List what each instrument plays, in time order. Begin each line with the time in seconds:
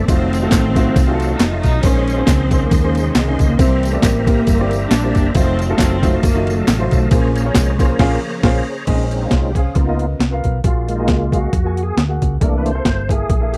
0.07 fingered electric bass F1, string section D#3 A3 C4, tonewheel organ F#3 D#5 F5 A5, upright piano A3 D#4 F4 F#4 C5, kick, ride, tambourine
0.33 ride, tambourine
0.41 upright piano A3 D#4 F4 F#4 A4
0.51 fingered electric bass A1, kick, snare, clap, ride, tambourine
0.75 upright piano A3 D#4 F4 F#4 C5, kick, snare, ride, tambourine
0.96 fingered electric bass C2, kick, ride, tambourine
1.07 upright piano A3 D#4 F4 F#4 G#4
1.15 upright piano A4
1.20 ride, tambourine
1.38 fingered electric bass F1, string section D#4, snare, clap, ride, tambourine
1.51 upright piano A3 D#4 F4 F#4 D#5
1.61 fingered electric bass B1, string section D#4, kick, ride
1.65 tambourine
1.82 fingered electric bass A#1, upright piano A#2 A#3 C#4 D#4 G#4 C5, string section F3 G#3 C#4, tonewheel organ G#4 C5 D#5 C6, kick, ride, tambourine
2.08 ride, tambourine
2.17 upright piano A#3 C#4 D#4 G#4 C5
2.24 fingered electric bass C#2, string section D#3 G#3 C4, kick, snare, ride
2.29 clap, tambourine
2.51 upright piano A#3 C#4 D#4 G#4 C5, kick, ride, tambourine
2.69 fingered electric bass D#2, string section C#3 D#3 A#3, kick, ride, tambourine
2.83 upright piano A#3 C#4 D#4 G#4 C5
2.95 ride, tambourine
3.03 string section C3 C#3 G#3
3.15 fingered electric bass C2, snare, clap, ride, tambourine
3.27 upright piano A#3 C#4 D#4 G#4 D#5
3.39 fingered electric bass C#2, kick, ride, tambourine
3.46 string section A#3
3.59 fingered electric bass C2, upright piano C3 A#3 C4 E4 G4 C5, string section E3 G3 C4, tonewheel organ G4 C5 E5 A#5, kick, ride, tambourine
3.83 ride, tambourine
3.92 string section A3, upright piano A#3 C4 E4 G4 D5
4.02 fingered electric bass A1, string section E3 G3 A#3, kick, snare, clap, ride, tambourine
4.27 upright piano A#3 C4 E4 G4 A#4, kick, ride, tambourine
4.47 fingered electric bass G1, kick, ride, tambourine
4.59 upright piano A#3 C4 E4 G4 D5
4.71 ride, tambourine
4.91 fingered electric bass A#1, string section G3 A#3 D4, snare, clap, ride, tambourine
5.03 upright piano A#3 C4 E4 G4 D5
5.15 fingered electric bass F#1, kick, ride, tambourine
5.34 fingered electric bass F1, string section D#3 A3 C4, tonewheel organ F#3 D#5 F5 A5, upright piano A3 D#4 F4 F#4 C5, kick, ride, tambourine
5.59 ride, tambourine
5.69 upright piano A3 D#4 F4 F#4 A4
5.78 fingered electric bass F#1, string section D#3 A3 C4, kick, snare, clap, ride, tambourine
6.02 upright piano A3 D#4 F4 F#4 C5, kick, ride, tambourine
6.23 fingered electric bass F#1, string section D#3 F#3 A#3, kick, ride, tambourine
6.34 upright piano A3 D#4 F4 F#4 D#5
6.47 ride, tambourine
6.57 string section C3 D#3 A3
6.68 fingered electric bass A1, snare, clap, ride, tambourine
6.79 upright piano A3 D#4 F4 F#4 C5
6.91 fingered electric bass B1, string section A3, kick, ride, tambourine
7.10 fingered electric bass A#1, upright piano A#2 A#3 C#4 F4 G#4 C5, string section F3 A#3 C#4, tonewheel organ G#4 C5 C#5 A#5, kick, ride, tambourine
7.35 string section A#3, ride, tambourine
7.44 upright piano A#3 C#4 F4 G#4 C#5
7.54 fingered electric bass C2, string section G#3, kick, snare, clap, ride, tambourine
7.79 string section C#3 F3 A#3, upright piano A#3 C#4 F4 G#4 C5, kick, snare, ride, tambourine
7.99 fingered electric bass A#1, upright piano A#3 C#4 F4 G#4, kick, snare, crash
8.43 fingered electric bass A#1, upright piano A#3 C#4 F4 G#4 C5, kick, snare, crash
8.86 fingered electric bass A#1, upright piano A#2 C#4 G#4 C5 D#5, tonewheel organ G#3 C4 C#4 D#4, kick, closed hi-hat, crash
9.11 closed hi-hat
9.22 upright piano C#4 G#4 C5 F5
9.31 fingered electric bass C2, tonewheel organ F4, kick, snare, closed hi-hat
9.50 tonewheel organ G4
9.55 upright piano C#4 G#4 C5 F5, tonewheel organ G#4, kick, closed hi-hat
9.75 fingered electric bass C#2, upright piano C#3, tonewheel organ A#3 B3 D#4 F4, kick, closed hi-hat
9.87 upright piano B3 F4 A#4 D#5
9.99 closed hi-hat
10.19 fingered electric bass C2, snare, closed hi-hat
10.31 upright piano B3 F4 A#4 F5
10.44 fingered electric bass B1, kick, closed hi-hat
10.64 fingered electric bass A#1, upright piano A#2 A#3 F#4 G#4 F5, tonewheel organ F4, kick, closed hi-hat
10.88 tonewheel organ G#3 A#3 F4, closed hi-hat
10.95 upright piano A#3 F#4, tonewheel organ D#4
10.99 upright piano G#4 D#5
11.08 fingered electric bass C#2, tonewheel organ F4, kick, snare, closed hi-hat
11.32 upright piano A#3 F#4 G#4 F5, kick, closed hi-hat
11.38 tonewheel organ F#4
11.53 fingered electric bass F2, kick, closed hi-hat
11.64 upright piano A#3 F#4 G#4 G#5
11.77 closed hi-hat
11.83 tonewheel organ G#4
11.97 fingered electric bass D2, snare, closed hi-hat
12.08 upright piano A#3 F#4 G#4 F#5
12.22 fingered electric bass C#2, kick, closed hi-hat
12.40 fingered electric bass C2, upright piano C3 A#3 E4 A4 D5, tonewheel organ E3 A3 A#3 D4 A#4, kick, closed hi-hat
12.58 tonewheel organ B4
12.66 tonewheel organ C5, closed hi-hat
12.74 upright piano A#3 E4 A4 C5
12.85 fingered electric bass G1, kick, snare, closed hi-hat
13.08 upright piano A#3 E4 A4 E5, tonewheel organ G#4, kick, closed hi-hat
13.30 fingered electric bass A#1, kick, closed hi-hat
13.40 upright piano A#3 E4 A4 E5
13.53 tonewheel organ G4, closed hi-hat